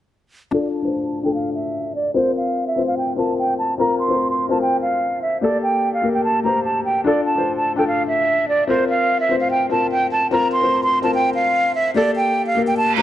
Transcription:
0.51 0.72 D4 medium
0.51 0.73 F4 medium
0.51 0.73 A4 loud
0.51 0.68 D5 medium
0.73 1.02 A5 medium
0.82 1.09 D4 medium
0.82 1.10 F4 medium
0.82 1.11 C5 medium
1.04 1.19 A5 medium
1.23 1.77 D4 medium
1.23 1.77 F4 medium
1.23 1.78 A4 medium
1.23 1.32 G5 medium
1.35 1.50 F5 medium
1.55 1.93 E5 medium
1.95 2.11 D5 medium
2.14 2.55 C4 loud
2.14 2.56 F4 medium
2.14 2.56 A#4 loud
2.14 2.32 C5 medium
2.36 2.65 F5 medium
2.67 2.83 E5 medium
2.76 3.03 C4 medium
2.76 3.04 F4 medium
2.76 3.05 C5 medium
2.88 2.95 F5 medium
2.98 3.13 G5 medium
3.16 3.57 C4 medium
3.16 3.58 F4 medium
3.16 3.58 A#4 medium
3.16 3.34 A5 medium
3.38 3.54 G5 medium
3.59 3.74 A5 medium
3.78 3.98 C4 medium
3.78 3.99 F4 medium
3.78 4.00 A#4 loud
3.78 3.95 A#5 medium
3.99 4.28 C6 medium
4.08 4.36 C4 medium
4.08 4.36 F4 medium
4.08 4.37 C5 medium
4.30 4.46 C6 medium
4.49 5.03 C4 medium
4.49 5.04 F4 medium
4.49 5.04 A#4 medium
4.49 4.58 A5 medium
4.61 4.77 G5 medium
4.82 5.20 F5 medium
5.22 5.38 E5 medium
5.41 5.82 A#3 medium
5.41 5.82 G4 medium
5.41 5.83 A4 loud
5.41 5.58 D5 medium
5.63 5.92 G5 medium
5.94 6.09 F5 medium
6.02 6.29 A#3 medium
6.02 6.30 G4 medium
6.02 6.31 A#4 medium
6.14 6.22 G5 medium
6.24 6.40 A5 medium
6.43 6.84 A#3 medium
6.43 6.84 G4 medium
6.43 6.85 C5 medium
6.43 6.60 A#5 medium
6.65 6.80 A5 medium
6.85 7.01 G5 medium
7.04 7.25 D4 medium
7.04 7.26 F4 medium
7.04 7.26 A4 loud
7.04 7.21 D5 medium
7.26 7.55 A5 medium
7.35 7.62 D4 medium
7.35 7.63 F4 medium
7.35 7.64 C5 medium
7.57 7.72 A5 medium
7.76 8.30 D4 medium
7.76 8.30 F4 medium
7.76 8.31 A4 medium
7.76 7.85 G5 medium
7.88 8.03 F5 medium
8.08 8.46 E5 medium
8.48 8.64 D5 medium
8.67 9.08 C4 loud
8.67 9.09 F4 medium
8.67 9.09 A#4 loud
8.67 8.85 C5 medium
8.89 9.18 F5 medium
9.20 9.36 E5 medium
9.29 9.56 C4 medium
9.29 9.57 F4 medium
9.29 9.58 C5 medium
9.41 9.48 F5 medium
9.51 9.66 G5 medium
9.70 10.10 C4 medium
9.70 10.11 F4 medium
9.70 10.11 A#4 medium
9.70 9.87 A5 medium
9.91 10.07 G5 medium
10.12 10.27 A5 medium
10.31 10.52 C4 medium
10.31 10.52 F4 medium
10.31 10.53 A#4 loud
10.31 10.48 A#5 medium
10.52 10.81 C6 medium
10.61 10.89 C4 medium
10.61 10.89 F4 medium
10.61 10.90 C5 medium
10.83 10.99 C6 medium
11.02 11.56 C4 medium
11.02 11.57 F4 medium
11.02 11.57 A#4 medium
11.02 11.11 A5 medium
11.15 11.30 G5 medium
11.35 11.73 F5 medium
11.75 11.91 E5 medium
11.94 12.35 A#3 medium
11.94 12.35 G4 medium
11.94 12.36 A4 loud
11.94 12.11 D5 medium
12.16 12.45 G5 medium
12.47 12.62 F5 medium
12.55 12.82 A#3 medium
12.55 12.83 G4 medium
12.55 12.84 A#4 medium
12.67 12.75 G5 medium
12.77 12.93 A5 medium
12.77 reverse cymbal medium
12.96 13.02 A#3 medium
12.96 13.02 G4 medium
12.96 13.02 A#5 medium

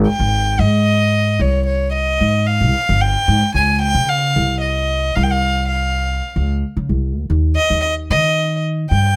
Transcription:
0.07 0.61 G5 medium
0.20 0.60 G#1 medium
0.59 1.36 G#2 medium
0.59 1.42 D#5 medium
1.39 2.17 C2 medium
1.39 1.66 C#5 medium
1.66 1.92 C#5 medium
1.93 2.48 D#5 medium
2.21 2.62 G#2 medium
2.46 3.03 F5 medium
2.61 2.74 C2 medium
2.89 3.14 G1 medium
3.01 3.55 G5 loud
3.28 3.41 G#2 medium
3.54 3.96 C#2 medium
3.54 3.80 G#5 medium
3.82 4.10 G5 loud
3.95 4.33 C#3 medium
4.08 4.60 F5 medium
4.36 5.12 C2 medium
4.61 5.17 D#5 medium
5.16 6.20 C2 medium
5.16 5.24 F5 medium
5.23 5.32 G5 medium
5.31 5.68 F5 medium
5.68 6.45 F5 medium
6.36 6.62 C#2 medium
6.77 6.89 C#3 medium
6.89 7.17 C2 medium
7.17 7.29 D2 medium
7.30 7.55 D#2 medium
7.55 7.81 D#5 medium
7.70 8.12 D#2 medium
7.82 7.94 D#5 medium
8.10 8.87 D#3 medium
8.10 8.60 D#5 medium
8.90 9.16 G2 medium
8.90 9.16 G5 loud

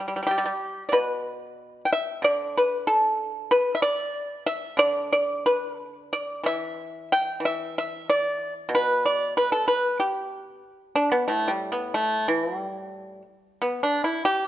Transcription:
0.08 0.14 G3 soft
0.16 0.21 G3 soft
0.23 0.29 G3 medium
0.27 0.82 G4 medium
0.31 0.37 G3 soft
0.38 0.44 G3 medium
0.46 0.52 G3 medium
0.89 2.23 B2 soft
0.89 0.95 D5 medium
0.93 1.80 B4 medium
1.85 1.92 G5 medium
1.93 2.22 E5 medium
2.22 4.13 D3 medium
2.22 2.54 D5 medium
2.58 2.86 B4 medium
2.87 3.31 A4 medium
3.51 3.74 B4 medium
3.75 3.82 E5 medium
3.82 4.42 D5 loud
4.46 4.77 E5 medium
4.77 6.78 D3 medium
4.77 5.10 D5 loud
5.13 5.43 D5 medium
5.46 5.76 B4 medium
5.76 5.92 A4 medium
6.13 6.43 D5 medium
6.44 7.39 E3 medium
6.44 7.08 E5 medium
7.12 7.42 G5 medium
7.40 9.32 E3 medium
7.45 7.74 E5 medium
7.78 8.06 E5 medium
8.10 8.53 D5 medium
8.69 10.63 B2 medium
8.75 9.02 B4 medium
9.06 9.33 D5 medium
9.37 9.50 B4 medium
9.52 9.66 A4 medium
9.68 9.97 B4 medium
10.00 10.94 G4 medium
10.96 11.12 D4 medium
11.12 11.28 B3 medium
11.28 13.26 A2 soft
11.28 11.50 A3 medium
11.48 11.71 G3 medium
11.72 11.94 B3 medium
11.94 12.26 A3 medium
12.28 12.58 E3 medium
12.58 13.22 G3 medium
13.62 13.80 B3 medium
13.83 14.01 D4 medium
14.04 14.22 E4 medium
14.25 14.43 G4 medium

